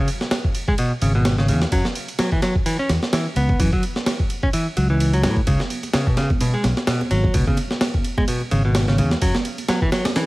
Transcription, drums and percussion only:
0.08 ride
0.21 snare
0.31 snare, ride
0.44 kick
0.55 ride
0.68 kick
0.78 ride
1.02 ride
1.25 snare, ride
1.38 snare
1.48 ride
1.61 snare
1.72 kick, ride
1.85 snare
1.95 ride
2.08 ride
2.19 snare, ride
2.32 kick
2.42 snare, ride
2.55 kick
2.66 ride
2.89 snare, ride
3.03 snare
3.13 snare, ride
3.36 ride
3.49 kick
3.60 kick, ride
3.73 kick
3.83 ride
3.96 snare
4.06 snare, ride
4.20 kick
4.30 ride
4.43 kick
4.53 ride
4.77 ride
5.00 ride
5.13 ride
5.23 snare, ride
5.37 kick
5.47 kick, ride, muted conga
5.60 snare, high conga
5.70 ride
5.83 ride, muted conga
5.94 snare, ride, high conga
6.07 kick, muted conga
6.17 snare, ride
6.30 kick, high conga, low conga
6.41 ride, muted conga
6.64 snare, ride, muted conga, high conga
6.77 snare
6.87 snare, ride
7.01 muted conga, high conga
7.11 ride, low conga
7.24 kick, muted conga
7.34 kick, ride
7.47 kick, high conga
7.57 ride, muted conga
7.71 snare
7.81 snare, ride, muted conga, high conga
7.94 kick
8.04 ride
8.18 kick, muted conga, high conga, low conga
8.28 ride
8.40 muted conga
8.51 ride, high conga
8.75 snare, ride, muted conga
8.88 snare, high conga
8.98 ride, muted conga, low conga
9.11 snare
9.22 kick, ride
9.35 snare, muted conga, high conga
9.45 ride
9.58 ride, muted conga
9.69 snare, ride, high conga
9.82 kick
9.92 snare, ride, muted conga
10.05 snare, ride, high conga, low conga
10.15 snare, ride, muted conga

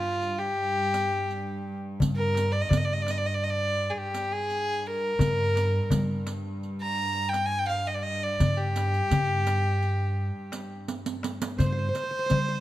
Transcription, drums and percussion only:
0.23 riq
0.94 riq, darbuka tek
1.31 riq
2.00 riq, darbuka dum
2.35 riq, darbuka tek
2.70 riq, darbuka dum
3.06 riq, darbuka tek
3.44 riq
4.14 riq, darbuka tek
4.50 riq
5.19 riq, darbuka dum
5.55 riq, darbuka tek
5.74 darbuka ka
5.90 riq, darbuka dum
6.27 riq, darbuka tek
6.63 riq
7.33 riq, darbuka tek
7.69 riq
8.40 riq, darbuka dum
8.76 riq, darbuka tek
8.94 riq, darbuka ka
9.11 riq, darbuka dum
9.47 riq, darbuka tek
9.82 riq, darbuka ka
10.52 riq, darbuka tek
10.88 riq, darbuka tek
11.06 riq, darbuka ka
11.23 riq, darbuka tek
11.42 riq, darbuka ka
11.60 riq, darbuka dum
11.95 riq, darbuka tek
12.30 riq, darbuka dum

